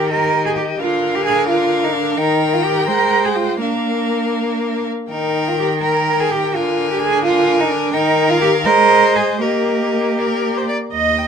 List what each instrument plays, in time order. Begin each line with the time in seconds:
Already playing: viola D#3, violin A#4 G5
0.09 violin G4 D#5, cello A#4
0.46 cello G#4
0.56 cello G4
0.79 viola D3, cello F4, violin A#4 F5
1.15 cello G4
1.26 cello G#4
1.49 cello F4, violin F5
1.84 cello D#4
1.94 cello D4
2.17 viola D#3, cello D#4, violin A#4 G5
2.54 cello F4
2.64 cello G4
2.87 viola G#3, cello A#4, violin C5
3.25 cello G#4
3.36 cello F4
3.61 viola A#3, cello D4, violin A#4 F5
5.10 viola D#3, cello D#4, violin A#4 G5
5.48 cello F4
5.59 cello G4
5.83 cello A#4, violin A#4 G5
6.20 cello G#4
6.31 cello G4
6.55 viola D3, cello F4, violin A#4 G#5
6.91 cello G4
7.02 cello G#4
7.25 cello F4, violin A#4 G#5
7.60 cello D#4
7.71 cello D4
7.94 viola D#3, cello D#4, violin A#4 G5
8.29 cello F4, violin F5
8.41 cello G4
8.65 viola G#3, cello A#4, violin C5 D#5
9.16 cello G#4
9.41 viola A#3, cello G4, violin A#4 D#5
10.18 violin A#4 D5
10.57 violin C5
10.69 violin D5
10.93 cello D#2, viola D#5, violin D#5
11.17 violin G5